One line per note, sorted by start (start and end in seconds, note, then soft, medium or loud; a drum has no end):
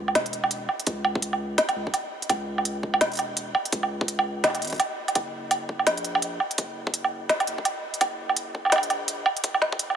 0.00 0.15 C#2 medium
0.08 low woodblock medium
0.15 0.68 E1 medium
0.15 snare loud
0.15 closed hi-hat medium
0.26 closed hi-hat soft
0.33 closed hi-hat soft
0.44 low woodblock medium
0.51 closed hi-hat medium
0.69 low woodblock soft
0.80 closed hi-hat soft
0.87 1.57 C#2 loud
0.87 kick loud
0.87 closed hi-hat medium
1.05 low woodblock medium
1.15 kick loud
1.22 closed hi-hat medium
1.33 low woodblock soft
1.58 snare loud
1.58 closed hi-hat medium
1.69 closed hi-hat soft
1.69 low woodblock medium
1.76 1.86 C#2 medium
1.87 kick medium
1.94 closed hi-hat medium
1.94 low woodblock medium
2.22 closed hi-hat soft
2.30 3.00 C#2 loud
2.30 kick loud
2.30 closed hi-hat medium
2.30 low woodblock medium
2.58 low woodblock medium
2.65 closed hi-hat medium
2.83 kick medium
2.94 low woodblock medium
3.01 3.54 E1 medium
3.01 snare loud
3.01 closed hi-hat medium
3.12 closed hi-hat soft
3.13 closed hi-hat soft
3.15 closed hi-hat soft
3.17 closed hi-hat soft
3.19 closed hi-hat soft
3.19 low woodblock soft
3.37 closed hi-hat medium
3.55 low woodblock medium
3.65 closed hi-hat soft
3.72 4.45 C#2 medium
3.72 kick loud
3.72 closed hi-hat medium
3.83 low woodblock soft
4.01 kick loud
4.08 closed hi-hat medium
4.19 low woodblock medium
4.44 4.63 E1 loud
4.44 snare loud
4.44 closed hi-hat medium
4.44 low woodblock soft
4.48 low woodblock soft
4.50 low woodblock soft
4.55 closed hi-hat soft
4.55 low woodblock soft
4.59 4.78 G#1 medium
4.59 closed hi-hat soft
4.59 low woodblock soft
4.65 closed hi-hat soft
4.67 closed hi-hat soft
4.70 closed hi-hat soft
4.72 kick medium
4.72 closed hi-hat soft
4.74 closed hi-hat soft
4.76 closed hi-hat soft
4.78 closed hi-hat soft
4.80 closed hi-hat medium
4.80 low woodblock medium
5.08 closed hi-hat soft
5.08 low woodblock soft
5.15 5.86 F#1 medium
5.15 kick loud
5.15 closed hi-hat medium
5.15 low woodblock soft
5.51 closed hi-hat medium
5.51 low woodblock medium
5.69 kick medium
5.79 low woodblock soft
5.87 6.39 A#1 medium
5.87 snare loud
5.87 closed hi-hat medium
5.97 closed hi-hat soft
6.04 closed hi-hat soft
6.15 low woodblock medium
6.22 closed hi-hat medium
6.40 low woodblock soft
6.51 closed hi-hat soft
6.58 7.29 F#1 loud
6.58 kick loud
6.58 closed hi-hat medium
6.87 kick loud
6.94 closed hi-hat medium
7.04 low woodblock soft
7.29 snare loud
7.29 closed hi-hat medium
7.40 closed hi-hat soft
7.40 low woodblock medium
7.47 7.57 F#1 medium
7.47 closed hi-hat soft
7.58 kick medium
7.65 closed hi-hat medium
7.65 low woodblock medium
7.94 closed hi-hat soft
8.01 8.72 F#1 loud
8.01 kick loud
8.01 closed hi-hat medium
8.01 low woodblock medium
8.29 low woodblock medium
8.37 closed hi-hat medium
8.55 kick medium
8.65 low woodblock soft
8.70 9.25 A#1 medium
8.70 snare loud
8.70 closed hi-hat medium
8.70 low woodblock soft
8.72 low woodblock medium
8.76 low woodblock medium
8.78 low woodblock medium
8.83 closed hi-hat soft
8.90 closed hi-hat soft
8.90 low woodblock medium
9.08 closed hi-hat medium
9.26 low woodblock medium
9.37 closed hi-hat soft
9.44 9.96 F#1 loud
9.44 kick loud
9.44 closed hi-hat medium
9.54 low woodblock medium
9.62 snare medium
9.72 kick loud
9.79 closed hi-hat medium
9.90 low woodblock soft